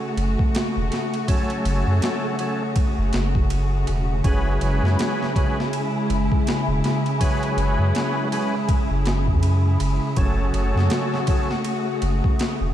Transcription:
Already playing: string section C#3 A3 F#4, synth texture G#4
0.17 sub bass F#1, ride
0.39 kick
0.55 snare, ride
0.77 sub bass E1
0.92 snare, ride
1.14 ride
1.27 tonewheel organ F#3 C#4 A4, kick, ride
1.50 ride
1.65 sub bass F#1, ride
1.87 sub bass F#2
2.02 snare, ride
2.39 tonewheel organ F#3 C#4 A4, ride
2.76 kick, ride
2.98 sub bass F#1
3.13 sub bass F#1, snare, ride
3.35 kick
3.50 ride
3.87 sub bass E1, ride
4.24 sub bass F#1, tonewheel organ F#3 C#4 G#4 B4, string section G#3 E4, kick, ride
4.61 sub bass F#1, ride
4.83 sub bass F#2, snare
4.99 snare, ride
5.23 snare
5.36 tonewheel organ F#3 C#4 G#4 B4, kick, ride
5.60 snare
5.73 ride
6.10 sub bass F#1, ride
6.32 kick
6.47 snare, ride
6.68 sub bass E1
6.84 snare, ride
7.06 ride
7.20 tonewheel organ F#3 C#4 G#4 B4, kick, ride
7.43 ride
7.57 sub bass F#1, ride
7.79 sub bass F#2
7.95 snare, ride
8.32 tonewheel organ F#3 C#4 G#4 B4, ride
8.69 kick, ride
8.90 sub bass F#1
9.06 snare, ride
9.28 sub bass F#2, kick
9.43 ride
9.80 sub bass F#1, ride
10.16 sub bass F#1, tonewheel organ F#3 C#4 A4, string section A3 F#4, kick, ride
10.54 sub bass F#1, ride
10.76 sub bass F#2, snare
10.90 snare, ride
11.14 snare
11.27 tonewheel organ F#3 C#4 A4, kick, ride
11.51 snare
11.64 ride
12.02 sub bass F#1, ride
12.24 kick
12.39 snare, ride
12.61 sub bass E1

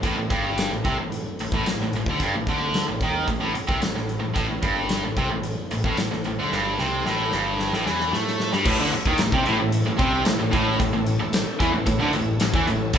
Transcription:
0.03 picked electric bass A1, distorted electric guitar A2, kick, closed hi-hat
0.17 picked electric bass A1, distorted electric guitar A2
0.30 picked electric bass G1, distorted electric guitar G2, kick, closed hi-hat
0.58 snare, closed hi-hat, tambourine
0.71 picked electric bass A1, distorted electric guitar A2
0.85 picked electric bass C2, distorted electric guitar C3, kick, closed hi-hat
0.99 picked electric bass A1, distorted electric guitar A2
1.12 closed hi-hat
1.39 picked electric bass A1, distorted electric guitar A2, closed hi-hat
1.52 picked electric bass A1, distorted electric guitar A2, kick
1.66 picked electric bass A1, distorted electric guitar A2, snare, closed hi-hat, tambourine
1.81 picked electric bass A1, distorted electric guitar A2, snare
1.93 picked electric bass A1, distorted electric guitar A2, closed hi-hat
2.06 picked electric bass D2, distorted electric guitar D3, kick
2.20 picked electric bass G1, distorted electric guitar G2, kick, closed hi-hat
2.34 picked electric bass A1, distorted electric guitar A2
2.47 picked electric bass D2, distorted electric guitar D3, kick, closed hi-hat
2.74 snare, closed hi-hat, tambourine
2.88 picked electric bass A1, distorted electric guitar A2
3.01 picked electric bass D#2, distorted electric guitar D#3, kick, closed hi-hat
3.28 picked electric bass A1, distorted electric guitar A2, kick, closed hi-hat
3.41 picked electric bass A1, distorted electric guitar A2
3.55 muted distorted electric guitar stroke, muted picked electric bass stroke, closed hi-hat
3.68 picked electric bass C2, distorted electric guitar C3, kick
3.82 picked electric bass A1, distorted electric guitar A2, snare, closed hi-hat, tambourine
3.95 picked electric bass A1, distorted electric guitar A2, snare
4.09 closed hi-hat
4.20 distorted electric guitar A2
4.24 picked electric bass A1
4.34 picked electric bass A1, distorted electric guitar A2, kick, closed hi-hat
4.48 picked electric bass A1, distorted electric guitar A2
4.62 picked electric bass G1, distorted electric guitar G2, kick, closed hi-hat
4.89 snare, closed hi-hat, tambourine
5.03 picked electric bass A1, distorted electric guitar A2
5.17 picked electric bass C2, distorted electric guitar C3, kick, closed hi-hat
5.31 picked electric bass A1, distorted electric guitar A2
5.43 closed hi-hat
5.71 picked electric bass A1, distorted electric guitar A2, closed hi-hat
5.84 picked electric bass A1, distorted electric guitar A2, kick
5.97 picked electric bass A1, distorted electric guitar A2, snare, closed hi-hat, tambourine
6.12 picked electric bass A1, distorted electric guitar A2, snare
6.24 picked electric bass A1, distorted electric guitar A2, closed hi-hat
6.39 picked electric bass D2, distorted electric guitar D3
6.52 picked electric bass G1, distorted electric guitar G2, snare
6.79 picked electric bass C2, distorted electric guitar C3, snare
7.06 picked electric bass A1, distorted electric guitar A2, snare
7.32 picked electric bass G1, distorted electric guitar G2, snare
7.59 snare
7.73 picked electric bass A1, distorted electric guitar A2, snare
7.86 picked electric bass E2, distorted electric guitar E3, snare
8.00 snare
8.12 picked electric bass A2, distorted electric guitar A3, snare
8.27 snare
8.40 snare
8.53 picked electric bass G2, distorted electric guitar G3, snare
8.65 picked electric bass A1, distorted electric guitar A2, tonewheel organ C#4 E4 A4, kick, crash
8.79 picked electric bass D2, distorted electric guitar D3
8.92 muted distorted electric guitar stroke, muted overdriven electric guitar stroke, muted picked electric bass stroke, closed hi-hat
9.05 picked electric bass D#2, distorted electric guitar D#3, kick
9.18 picked electric bass A1, distorted electric guitar A2, snare, closed hi-hat, tambourine
9.32 picked electric bass C2, distorted electric guitar C3, kick
9.46 picked electric bass A1, distorted electric guitar A2, closed hi-hat
9.60 picked electric bass A1, distorted electric guitar A2
9.72 closed hi-hat
9.86 picked electric bass A1, distorted electric guitar A2
9.98 picked electric bass C2, distorted electric guitar C3, kick, closed hi-hat
10.25 picked electric bass A1, distorted electric guitar A2, snare, closed hi-hat, tambourine
10.39 picked electric bass A1, distorted electric guitar A2
10.51 picked electric bass A1, distorted electric guitar A2, kick, closed hi-hat
10.80 picked electric bass A1, distorted electric guitar A2, kick, closed hi-hat
10.93 picked electric bass A1, distorted electric guitar A2
11.07 closed hi-hat
11.20 picked electric bass A1, distorted electric guitar A2
11.33 snare, closed hi-hat, tambourine
11.60 picked electric bass E2, distorted electric guitar E3, kick, closed hi-hat
11.73 picked electric bass A1, distorted electric guitar A2
11.86 picked electric bass A1, distorted electric guitar A2, kick, closed hi-hat
12.00 picked electric bass D2, distorted electric guitar D3
12.13 picked electric bass A1, distorted electric guitar A2, closed hi-hat
12.40 picked electric bass A1, distorted electric guitar A2, snare, closed hi-hat, tambourine
12.54 picked electric bass E2, distorted electric guitar E3, kick
12.67 picked electric bass A1, distorted electric guitar A2, closed hi-hat
12.93 picked electric bass A1, tonewheel organ C#4 E4 A4, kick, crash

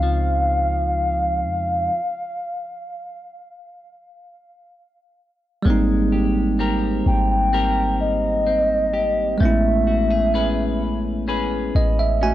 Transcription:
Already playing: 808-style bass C#2, clean electric guitar C#3 C4 D#4, tine electric piano F3 G#3 C4 D#4, soft synth lead F5
0.03 clean electric guitar F3
1.44 808-style bass F2
5.62 808-style bass G#1, tine electric piano G3 A#3, clean electric guitar G#3
5.68 tine electric piano C4 D#4
6.12 clean electric guitar G4
6.59 clean electric guitar C4 G4 A#4
7.06 808-style bass G#1, soft synth lead G5
7.31 soft synth lead G5
7.53 clean electric guitar C4 G4 A#4
8.01 soft synth lead D#5
8.47 clean electric guitar C4
8.93 clean electric guitar G4
9.38 808-style bass A1, tine electric piano G#3 B3, clean electric guitar A3, soft synth lead E5
9.43 tine electric piano C#4 E4
9.87 clean electric guitar F#4
10.11 clean electric guitar G#4
10.34 clean electric guitar C#4 G#4 B4
11.28 clean electric guitar C#4 G#4 B4
11.75 808-style bass A1, tine electric piano D#5
11.99 tine electric piano E5
12.21 tine electric piano A3 F#4 G#5, clean electric guitar C#4

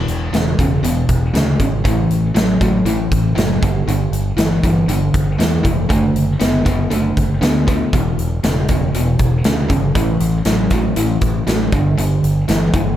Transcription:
Already playing: distorted electric guitar E2 B2
0.08 fingered electric bass E1, closed hi-hat
0.33 fingered electric bass E1, distorted electric guitar E2 C#3, snare, closed hi-hat
0.59 fingered electric bass E1, distorted electric guitar E2 C#3, kick, closed hi-hat
0.83 fingered electric bass E1, distorted electric guitar E2 B2, closed hi-hat
1.09 fingered electric bass E1, kick, closed hi-hat
1.34 fingered electric bass D2, distorted electric guitar E2 C#3, snare, closed hi-hat
1.60 fingered electric bass G#1, distorted electric guitar E2 C#3, kick, closed hi-hat
1.85 fingered electric bass A1, distorted electric guitar A2 E3, kick, closed hi-hat
2.10 fingered electric bass A1, closed hi-hat
2.34 fingered electric bass A1, distorted electric guitar A2 F#3, snare, closed hi-hat
2.61 fingered electric bass A1, distorted electric guitar A2 F#3, kick, closed hi-hat
2.85 fingered electric bass A1, distorted electric guitar A2 E3, closed hi-hat
3.11 fingered electric bass A1, kick, closed hi-hat
3.35 fingered electric bass F#1, distorted electric guitar A2 F#3, snare, closed hi-hat
3.62 fingered electric bass G1, distorted electric guitar G2 D3, kick, closed hi-hat
3.86 fingered electric bass G1, distorted electric guitar G2 D3, closed hi-hat
4.12 fingered electric bass G1, closed hi-hat
4.37 fingered electric bass G1, distorted electric guitar G2 E3, snare, closed hi-hat
4.63 fingered electric bass G1, distorted electric guitar G2 E3, kick, closed hi-hat
4.88 fingered electric bass G1, distorted electric guitar G2 D3, closed hi-hat
5.14 fingered electric bass G1, kick, closed hi-hat
5.38 fingered electric bass E2, distorted electric guitar G2 E3, snare, closed hi-hat
5.63 fingered electric bass F1, distorted electric guitar G2 E3, kick, closed hi-hat
5.89 fingered electric bass F#1, distorted electric guitar D3 A3, kick, closed hi-hat
6.14 fingered electric bass F#1, closed hi-hat
6.39 fingered electric bass F#1, distorted electric guitar D3 B3, snare, closed hi-hat
6.65 fingered electric bass F#1, distorted electric guitar D3 B3, kick, closed hi-hat
6.90 fingered electric bass F#1, distorted electric guitar D3 A3, closed hi-hat
7.17 fingered electric bass F#1, kick, closed hi-hat
7.41 fingered electric bass D2, distorted electric guitar D3 B3, snare, closed hi-hat
7.67 distorted electric guitar D3 B3, kick, closed hi-hat
7.93 fingered electric bass E1, distorted electric guitar E2 B2, kick, closed hi-hat
8.18 fingered electric bass E1, closed hi-hat
8.43 fingered electric bass E1, distorted electric guitar E2 C#3, snare, closed hi-hat
8.68 fingered electric bass E1, distorted electric guitar E2 C#3, kick, closed hi-hat
8.94 fingered electric bass E1, distorted electric guitar E2 B2, closed hi-hat
9.19 fingered electric bass E1, kick, closed hi-hat
9.44 fingered electric bass D2, distorted electric guitar E2 C#3, snare, closed hi-hat
9.69 fingered electric bass G1, distorted electric guitar E2 C#3, kick, closed hi-hat
9.95 fingered electric bass A1, distorted electric guitar A2 E3, kick, closed hi-hat
10.20 fingered electric bass A1, closed hi-hat
10.45 fingered electric bass A1, distorted electric guitar A2 F#3, snare, closed hi-hat
10.70 fingered electric bass A1, distorted electric guitar A2 F#3, kick, closed hi-hat
10.96 fingered electric bass A1, distorted electric guitar A2 E3, closed hi-hat
11.21 fingered electric bass A1, kick, closed hi-hat
11.47 fingered electric bass A1, distorted electric guitar A2 F#3, snare, closed hi-hat
11.72 fingered electric bass G1, distorted electric guitar G2 D3, kick, closed hi-hat
11.97 fingered electric bass G1, distorted electric guitar G2 D3, closed hi-hat
12.23 fingered electric bass G1, closed hi-hat
12.48 fingered electric bass G1, distorted electric guitar G2 E3, snare, closed hi-hat
12.73 fingered electric bass G1, distorted electric guitar G2 E3, kick, closed hi-hat

